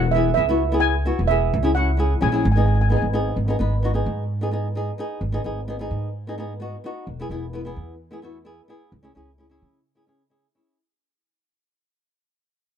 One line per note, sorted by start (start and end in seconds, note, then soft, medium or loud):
0.00 0.30 E1 loud
0.00 0.11 F#5 medium
0.11 0.28 B3 medium
0.11 0.33 E5 medium
0.16 0.29 E4 medium
0.16 0.29 G#4 medium
0.34 1.09 C#2 medium
0.34 0.44 B3 medium
0.34 0.44 E4 medium
0.34 0.83 E5 loud
0.39 0.45 G#4 medium
0.49 0.62 B3 medium
0.49 0.63 E4 medium
0.49 0.63 F#4 medium
0.72 0.92 B3 medium
0.72 0.93 E4 medium
0.72 0.94 G#4 medium
0.80 1.29 G#5 medium
1.05 1.20 B3 medium
1.05 1.20 E4 medium
1.05 1.20 F#4 medium
1.19 1.49 E1 medium
1.28 1.50 B3 medium
1.28 1.50 E4 medium
1.28 1.51 G#4 medium
1.28 1.71 E5 medium
1.53 2.15 C#2 loud
1.63 1.70 C#4 medium
1.63 1.71 E4 medium
1.63 1.71 G#4 medium
1.75 1.89 C#4 medium
1.75 1.90 E4 medium
1.75 1.90 F#4 medium
1.75 2.22 F#5 medium
1.97 2.12 C#4 medium
1.97 2.12 E4 medium
1.97 2.13 G#4 medium
2.21 2.42 A#1 medium
2.21 2.28 C#4 medium
2.21 2.29 E4 medium
2.21 2.29 G#4 medium
2.21 2.27 G#5 medium
2.29 2.44 C#4 medium
2.29 2.44 E4 medium
2.29 2.35 G#5 medium
2.34 2.45 G#4 medium
2.34 2.42 G#5 medium
2.43 2.96 G#1 loud
2.43 2.50 G#5 medium
2.52 2.58 G#5 medium
2.56 2.77 B3 medium
2.56 2.77 D#4 medium
2.56 2.77 G#4 medium
2.60 2.65 G#5 soft
2.66 2.73 G#5 medium
2.74 2.80 G#5 soft
2.81 2.88 G#5 medium
2.89 3.04 B3 medium
2.89 3.05 D#4 medium
2.89 3.05 G#4 medium
2.89 2.95 G#5 medium
2.97 3.04 G#5 medium
3.02 3.33 G#1 medium
3.13 3.34 B3 medium
3.13 3.34 D#4 medium
3.13 3.35 G#4 medium
3.36 3.57 G#1 medium
3.48 3.55 B3 medium
3.48 3.55 D#4 medium
3.48 3.56 G#4 medium
3.59 4.01 G#1 medium
3.59 3.73 B3 medium
3.59 3.74 D#4 medium
3.59 3.74 B4 medium
3.83 3.90 B3 medium
3.83 3.91 D#4 medium
3.83 3.91 F#4 medium
3.94 4.22 B3 medium
3.94 4.22 D#4 medium
3.94 4.22 G#4 medium
4.06 4.89 G#2 medium
4.41 4.48 B3 medium
4.41 4.48 D#4 medium
4.41 4.49 G#4 medium
4.51 4.66 B3 medium
4.51 4.66 D#4 medium
4.51 4.67 G#4 medium
4.75 4.89 B3 medium
4.75 4.90 D#4 medium
4.75 4.90 G#4 medium
4.98 5.19 B3 medium
4.98 5.20 D#4 medium
4.98 5.20 G#4 medium
5.21 5.42 G#1 medium
5.32 5.40 B3 medium
5.32 5.40 D#4 medium
5.32 5.41 G#4 medium
5.44 5.86 G#1 medium
5.44 5.59 B3 medium
5.44 5.59 D#4 medium
5.44 5.59 G#4 medium
5.68 5.75 B3 medium
5.68 5.75 D#4 medium
5.68 5.76 G#4 medium
5.79 6.07 B3 medium
5.79 6.08 D#4 medium
5.79 6.08 G#4 medium
5.91 6.74 G#2 medium
6.27 6.33 B3 medium
6.27 6.34 D#4 medium
6.27 6.34 G#4 medium
6.38 6.52 B3 medium
6.38 6.52 D#4 medium
6.38 6.53 G#4 medium
6.60 6.74 B3 medium
6.60 6.75 D#4 medium
6.60 6.75 F#4 medium
6.84 7.05 B3 medium
6.84 7.05 D#4 medium
6.84 7.06 F#4 medium
7.07 7.28 E1 medium
7.20 7.26 B3 medium
7.20 7.26 E4 medium
7.20 7.27 G#4 medium
7.29 7.71 E1 medium
7.29 7.44 B3 medium
7.29 7.45 E4 medium
7.29 7.45 G#4 medium
7.53 7.60 B3 medium
7.53 7.61 E4 medium
7.53 7.61 B4 medium
7.65 7.93 B3 medium
7.65 7.93 E4 medium
7.65 7.94 G#4 medium
7.76 8.59 E2 medium
8.11 8.18 B3 medium
8.11 8.18 E4 medium
8.11 8.19 G#4 medium
8.22 8.37 B3 medium
8.22 8.37 E4 medium
8.22 8.38 F#4 medium
8.45 8.59 B3 medium
8.45 8.60 E4 medium
8.45 8.60 G#4 medium
8.68 8.89 B3 medium
8.68 8.90 E4 medium
8.68 8.90 G#4 medium
8.92 9.13 C#2 medium
9.03 9.10 C#4 medium
9.03 9.11 E4 medium
9.03 9.11 G#4 medium
9.15 9.57 C#2 medium
9.15 9.29 C#4 medium
9.15 9.30 E4 medium
9.15 9.30 G#4 medium
9.38 9.46 C#4 medium
9.38 9.46 E4 medium
9.38 9.47 G#4 medium
9.49 9.78 C#4 medium
9.49 9.78 E4 medium
9.49 9.79 G#4 medium
9.62 10.45 C#3 medium
9.95 10.03 C#4 medium
9.95 10.03 E4 medium
9.95 10.04 G#4 medium
10.07 10.22 C#4 medium
10.07 10.22 E4 medium
10.07 10.23 G#4 medium
10.30 10.45 C#4 medium
10.30 10.45 E4 medium
10.30 10.46 G#4 medium
10.55 10.76 C#4 medium
10.55 10.76 E4 medium
10.55 10.77 G#4 medium